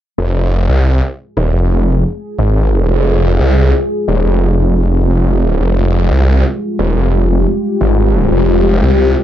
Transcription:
0.18 F1 G#3 F4 G#4
0.69 C2
1.37 D#1
1.54 F1
2.39 G#1
2.89 F1
3.40 C2
4.08 D#1
4.25 F1
4.76 F1
5.10 F1
5.61 F1 G4
6.11 C2
6.79 D#1
6.96 F1
7.81 G#1
8.32 F1
8.83 C2

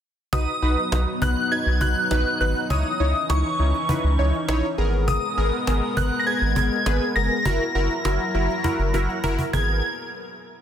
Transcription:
0.33 B1 F#3 B3 D#4 F#4 B4 D#6, cajon bass
0.48 cajon slap
0.62 B1 D#4 F#4 B4, cajon slap
0.77 cajon slap
0.92 B1 D#4 F#4 B4, cajon slap
1.07 cajon slap
1.22 B1 D#4 F#4 B4 F#6, cajon bass
1.37 cajon slap
1.51 D#4 F#4 B4 G#6, cajon slap
1.66 B1, cajon slap
1.81 B1 D#4 F#4 B4 F#6, cajon bass
1.96 cajon slap
2.11 A#1 D#4 F#4 B4, cajon slap
2.26 cajon slap
2.41 G#1 D#4 F#4 B4 F#6, cajon slap
2.56 cajon slap
2.70 C#2 E3 C#4 D#4 E4 C#5 D#6, cajon bass
3.00 C#2 D#4 E4 C#5, cajon slap
3.15 cajon slap
3.30 C#2 D#4 E4 C#5 C#6, cajon slap
3.45 cajon slap
3.59 C#2 D#4 E4 C#5, cajon slap
3.74 cajon slap
3.89 D#4 E4 B4, cajon bass
4.04 C#2, cajon slap
4.19 C#2 D#4 E4 C#5, cajon slap
4.34 cajon slap
4.48 A#1 D#4 E4 C#5, cajon slap
4.63 cajon slap
4.78 G#1 G#3 B3 G#4 A#4, cajon slap
4.93 cajon slap
5.08 D#6, cajon bass
5.23 cajon slap
5.37 G#1 B3 G#4 A#4, cajon slap
5.53 cajon slap
5.67 G#1 B3 G#4 A#4, cajon slap
5.82 cajon slap
5.97 G#1 B3 G#4 A#4 F#6, cajon bass
6.12 cajon slap
6.20 A#6
6.27 B3 G#4 B4 G#6, cajon slap
6.42 G#1, cajon slap
6.56 G#1 B3 G#4 A#4, cajon bass
6.71 cajon slap
6.86 G#1 B3 G#4 B4, cajon slap
7.01 cajon slap
7.16 F#1 B3 G#4 A#4 A#6, cajon slap
7.31 cajon slap
7.45 F#1 F#3 E4 F#4 A#4, cajon bass
7.61 cajon slap
7.75 F#1 E4 F#4 A#4, cajon slap
7.90 cajon slap
8.05 F#1 E4 F#4 A#4, cajon slap
8.20 cajon slap
8.35 F#1 E4 F#4 A#4, cajon slap
8.50 cajon slap
8.64 E4 F#4 A#4, cajon bass, cajon slap
8.79 F#1, cajon slap
8.94 F#1 E4 F#4 A#4 E5, cajon slap
9.09 F#5, cajon slap
9.24 F#1 E4 F#4 A#4 A#5, cajon bass
9.39 cajon bass
9.53 G#1 B3 G#4 A#4 G#6, cajon bass

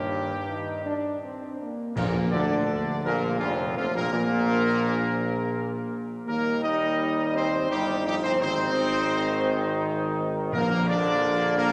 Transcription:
Already playing: D#2 G2 G4
0.48 D#4
0.86 D4
1.23 C4
1.61 A#3
1.95 A#1 A#2 A#3 A#4, concert bass drum, crash
2.31 D2 D3 D4 D5
3.04 A#1 A#2 A#3 A#4
3.39 F1 F2 F3 F4
3.76 F1 F2 F3 F4
3.94 A#1 A#2 A#3 A#4
4.12 A#1 A#2 A#3 A#4
6.27 D#2 G3 A#3 D#4 A#4
6.63 D#4 D#5
7.35 C4 C5
7.70 G1 G3 D#4 G4
8.06 F3 G3 G4
8.23 C4 C5
8.41 G#1 D#3 C4 D#4 C5
10.52 A#1 A#2 D3 A#3 A#4
10.87 D4 D5
11.58 A#3 A#4

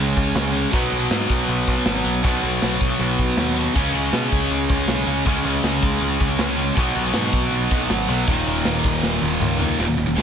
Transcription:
Already playing: C#2 C#3 G#3 C#4
0.17 C#2, kick, open hi-hat
0.35 C#2, snare, open hi-hat
0.53 C#3 G#3 C#4, open hi-hat
0.71 B1 B2 F#3 B3, kick, open hi-hat
0.92 B1, open hi-hat
1.11 G#2, snare, open hi-hat
1.29 B1, kick, open hi-hat
1.48 B1, open hi-hat
1.67 B1, kick, open hi-hat
1.85 G#1, snare, open hi-hat
2.04 B1 F#3 B3, open hi-hat
2.08 B2
2.23 B1 B2 F#3, kick, open hi-hat
2.28 B3
2.43 B1, open hi-hat
2.62 B1, snare, open hi-hat
2.81 B1, kick, open hi-hat
2.99 B1, open hi-hat
3.19 B1, kick, open hi-hat
3.37 D#2, snare, open hi-hat
3.55 B2 F#3 B3, open hi-hat
3.74 C#2 C#3 G#3 C#4, kick, crash
3.94 C#2, open hi-hat
4.12 B2, snare, open hi-hat
4.32 C#2, kick, open hi-hat
4.51 C#2, open hi-hat
4.69 C#2, kick, open hi-hat
4.88 B1, snare, open hi-hat
5.06 C#2 G#3 C#4, open hi-hat
5.10 C#3
5.24 C#2 C#3 G#3 C#4, kick, open hi-hat
5.44 C#2, open hi-hat
5.63 C#2, snare, open hi-hat
5.83 C#2, kick, open hi-hat
6.01 C#2, open hi-hat
6.20 C#2, kick, open hi-hat
6.39 C#2, snare, open hi-hat
6.56 C#3 G#3 C#4, open hi-hat
6.75 B1 B2 F#3, kick, open hi-hat
6.79 B3
6.95 B1, open hi-hat
7.14 G#2, snare, open hi-hat
7.32 B1, kick, open hi-hat
7.51 B1, open hi-hat
7.71 B1, kick, open hi-hat
7.90 G#1, snare, open hi-hat
8.08 B1 B2 F#3 B3, open hi-hat
8.28 D#1 D#2 A#2 D#3, kick, open hi-hat
8.46 D#1, open hi-hat
8.65 D#1, snare, open hi-hat
8.84 D#1, kick, open hi-hat
9.03 D#1, snare
9.22 D#1, high tom
9.40 C#2, mid tom
9.58 D#2 A#2 D#3, floor tom
9.78 D#1 D#2 A#2, snare, crash
9.88 D#1 D#2 A#2
9.97 D#1 D#2 A#2
10.06 D#1 D#2 A#2
10.15 C#2 C#3 G#3, snare

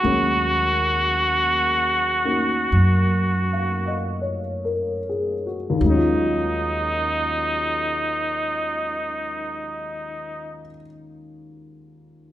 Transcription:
Already playing: F#4
0.02 D#2 F#3 G#3 A#3 C#4
2.25 A#3 C#4 D#4 F#4
2.72 F#2
3.53 F5
3.86 D#5
4.21 C#5
4.65 A#4
5.09 G#4
5.46 F#4
5.70 D#2
5.75 D#3
5.79 D#2 F#3
5.85 G#3 D#4
5.90 C#4
5.94 F4

